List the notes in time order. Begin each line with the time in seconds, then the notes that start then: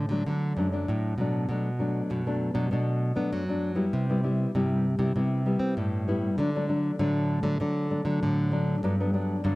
Already playing: A2
0.09 D3 F#3 A3 D4
0.27 D3 F#3 A3 D4
0.57 F#2 F#3 A3 D4
0.72 F#3 A3 D4
0.88 A2
1.18 B2 F#3 A3 D4
1.49 B2 F#3 A3 D4
1.79 F#3 A3 D4
2.10 F#2 B2
2.26 F#3 A3 D4
2.54 B2 F#3 A3 D4
2.71 B2 F#3 A3 D4
3.15 F#3 A3 B3 D4
3.33 F#2 F#3
3.49 F#3 A3 D4
3.75 G3 B3 E4
3.93 C3
4.09 G3 B3 E4
4.23 G3 B3 E4
4.55 G2 C3 G3 B3 E4
4.99 C3 G3 B3 E4
5.16 C3 G3 B3 E4
5.46 G3 B3 E4
5.59 C4
5.77 G2 A2
6.08 G3 B3 E4
6.38 D3 F#3 A3 D4
6.55 F#3 A3 D4
6.68 F#3 A3 D4
6.99 A2 D3 F#3 A3 D4
7.43 D3 F#3 A3 D4
7.60 D3 F#3 A3 D4
7.90 F#3 A3 D4
8.05 D3 F#3 A3 D4
8.23 A2 D3
8.52 F#3 A3 D4
8.83 G2 F#3 B3 D4
9.00 F#3 B3 D4
9.13 F#3 B3 D4
9.44 G2 D3 F#3 B3 D4